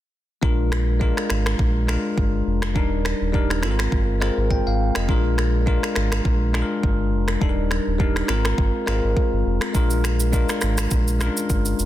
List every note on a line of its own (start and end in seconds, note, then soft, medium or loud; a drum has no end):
0.41 1.13 A#1 loud
0.41 0.85 G#3 medium
0.41 0.85 D4 medium
0.41 0.85 F4 medium
0.41 0.86 A#4 medium
0.41 kick loud
0.72 finger snap medium
0.72 cross-stick medium
1.00 1.63 G#3 medium
1.00 1.63 D4 medium
1.00 1.63 F4 medium
1.00 1.64 A#4 medium
1.00 kick loud
1.17 finger snap medium
1.17 cross-stick medium
1.30 1.55 G#1 loud
1.30 finger snap medium
1.30 cross-stick medium
1.46 finger snap medium
1.46 cross-stick loud
1.59 1.97 A#1 loud
1.59 kick loud
1.87 2.50 G#3 medium
1.87 2.50 D4 medium
1.87 2.51 F4 medium
1.87 2.51 A#4 medium
1.87 finger snap medium
1.87 cross-stick medium
2.18 2.42 G1 medium
2.18 kick medium
2.47 2.77 F1 medium
2.62 finger snap medium
2.62 cross-stick medium
2.75 3.14 D#1 loud
2.75 3.18 G3 medium
2.75 3.18 D4 medium
2.75 3.18 D#4 medium
2.75 3.19 A#4 medium
2.75 kick loud
3.05 finger snap medium
3.05 cross-stick medium
3.21 3.65 D#1 medium
3.33 3.62 G3 medium
3.33 3.63 D4 medium
3.33 3.63 D#4 medium
3.33 3.64 A#4 medium
3.33 kick loud
3.50 finger snap medium
3.50 cross-stick medium
3.62 3.88 G#1 loud
3.62 4.10 G#3 medium
3.62 4.11 C4 medium
3.62 4.11 F4 medium
3.62 3.71 A4 medium
3.62 finger snap medium
3.62 cross-stick medium
3.71 4.15 A#4 medium
3.79 finger snap medium
3.79 cross-stick loud
3.92 4.30 G1 loud
3.92 kick loud
4.20 4.83 G#3 medium
4.20 4.84 C4 medium
4.20 4.84 F4 medium
4.20 4.84 A#4 medium
4.20 finger snap medium
4.20 cross-stick medium
4.37 4.62 G#1 medium
4.50 4.66 G5 medium
4.50 kick medium
4.67 4.91 G#1 medium
4.67 4.94 F5 medium
4.95 5.10 F1 medium
4.95 5.23 D#5 medium
4.95 finger snap medium
4.95 cross-stick medium
5.08 5.79 A#1 loud
5.08 5.51 G#3 medium
5.08 5.51 D4 medium
5.08 5.52 F4 medium
5.08 5.52 A#4 medium
5.08 kick loud
5.38 finger snap medium
5.38 cross-stick medium
5.66 6.29 G#3 medium
5.66 6.29 D4 medium
5.66 6.29 F4 medium
5.66 6.30 A#4 medium
5.66 kick loud
5.83 finger snap medium
5.83 cross-stick medium
5.96 6.21 G#1 medium
5.96 finger snap medium
5.96 cross-stick medium
6.12 finger snap medium
6.12 cross-stick loud
6.25 6.63 A#1 loud
6.25 kick loud
6.53 7.16 G#3 medium
6.53 7.16 D4 medium
6.53 7.17 F4 medium
6.53 6.62 G#4 medium
6.53 finger snap medium
6.53 cross-stick medium
6.62 7.20 A#4 medium
6.83 7.14 G1 loud
6.83 kick medium
7.13 7.37 F1 medium
7.28 finger snap medium
7.28 cross-stick medium
7.40 7.80 D#1 loud
7.40 7.84 G3 medium
7.40 7.84 D4 medium
7.40 7.84 D#4 medium
7.40 7.49 A4 medium
7.40 kick loud
7.49 7.88 A#4 medium
7.71 finger snap medium
7.71 cross-stick medium
7.87 8.23 D#1 medium
7.99 8.28 G3 medium
7.99 8.29 D4 medium
7.99 8.29 D#4 medium
7.99 8.29 A#4 medium
7.99 kick loud
8.16 finger snap medium
8.16 cross-stick medium
8.27 8.54 G#1 loud
8.27 8.76 G#3 medium
8.27 8.77 C4 medium
8.27 8.77 F4 medium
8.27 8.77 A#4 medium
8.27 finger snap medium
8.27 cross-stick medium
8.45 finger snap medium
8.45 cross-stick loud
8.58 8.72 G1 loud
8.58 kick loud
8.86 9.01 G#1 medium
8.86 9.49 G#3 medium
8.86 9.49 C4 medium
8.86 9.50 F4 medium
8.86 9.50 A#4 medium
8.86 finger snap medium
8.86 cross-stick medium
9.04 9.15 G#1 medium
9.17 kick medium
9.33 9.44 G1 medium
9.46 9.59 F1 medium
9.61 finger snap medium
9.61 cross-stick loud
9.74 10.45 A#1 loud
9.74 10.17 G#3 medium
9.74 10.17 D4 medium
9.74 10.17 F4 medium
9.74 10.18 A#4 medium
9.74 kick loud
9.74 shaker medium
9.90 shaker medium
10.04 finger snap medium
10.04 cross-stick medium
10.04 shaker medium
10.20 shaker medium
10.32 10.95 G#3 medium
10.32 10.95 D4 medium
10.32 10.95 F4 medium
10.32 10.96 A#4 medium
10.32 kick loud
10.32 shaker medium
10.49 finger snap medium
10.49 cross-stick medium
10.49 shaker soft
10.61 10.87 G#1 loud
10.61 finger snap medium
10.61 cross-stick medium
10.61 shaker soft
10.78 finger snap medium
10.78 cross-stick loud
10.78 shaker loud
10.91 11.30 A#1 loud
10.91 kick loud
10.91 shaker medium
11.08 shaker soft
11.19 11.82 G#3 medium
11.19 11.27 C#4 medium
11.19 11.83 F4 medium
11.19 11.83 A#4 medium
11.19 finger snap medium
11.19 cross-stick medium
11.19 shaker soft
11.26 11.85 D4 medium
11.37 shaker medium
11.49 11.74 G1 medium
11.49 kick medium
11.49 shaker medium
11.65 shaker medium
11.79 11.85 F1 medium
11.79 shaker medium